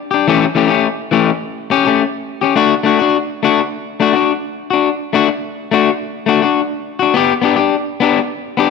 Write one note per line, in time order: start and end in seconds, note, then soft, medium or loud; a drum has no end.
0.11 0.27 D4 soft
0.11 0.26 G4 medium
0.28 0.44 E3 medium
0.28 0.44 A3 medium
0.28 0.45 C#4 medium
0.28 0.45 G4 medium
0.55 0.69 E3 medium
0.55 0.70 A3 medium
0.55 0.68 C#4 medium
0.55 0.67 G4 medium
0.68 0.87 A3 medium
0.68 0.87 C#4 medium
0.68 0.86 G4 medium
1.11 1.29 E3 medium
1.11 1.30 A3 medium
1.11 1.30 C#4 medium
1.11 1.30 G4 medium
1.70 1.85 C#4 medium
1.70 1.84 G4 medium
1.70 muted clean electric guitar stroke medium
1.85 2.03 A3 soft
1.85 2.03 C#4 soft
1.85 2.02 G4 medium
2.41 2.56 C#4 medium
2.41 2.56 G4 soft
2.41 muted clean electric guitar stroke soft
2.56 2.73 A3 medium
2.56 2.73 D4 medium
2.56 2.74 F#4 medium
2.83 2.98 A3 medium
2.83 2.99 D4 medium
2.83 2.98 F#4 medium
2.99 3.17 D4 medium
2.99 3.16 F#4 medium
3.43 3.60 A3 medium
3.43 3.60 D4 medium
3.43 3.61 F#4 medium
4.00 4.14 A3 medium
4.00 4.14 D4 medium
4.00 4.12 F#4 medium
4.13 4.32 D4 soft
4.13 4.31 F#4 medium
4.70 4.90 D4 soft
4.70 4.88 F#4 medium
5.13 5.28 A3 medium
5.13 5.29 D4 medium
5.13 5.27 F#4 medium
5.29 muted clean electric guitar stroke medium
5.71 5.89 A3 medium
5.71 5.90 D4 medium
5.71 5.90 F#4 medium
6.26 6.42 A3 medium
6.26 6.43 D4 medium
6.26 6.41 F#4 medium
6.42 6.61 D4 soft
6.42 6.60 F#4 medium
6.99 7.14 D4 soft
6.99 7.14 F#4 medium
7.14 7.32 B3 medium
7.14 7.33 G4 medium
7.14 muted clean electric guitar stroke medium
7.42 7.57 B3 medium
7.42 7.58 D4 medium
7.42 7.55 G4 medium
7.56 7.76 D4 medium
7.56 7.74 G4 medium
8.00 8.18 B3 medium
8.00 8.19 D4 medium
8.00 8.19 G4 medium
8.57 8.70 B3 medium
8.57 8.70 D4 medium
8.57 8.70 G4 medium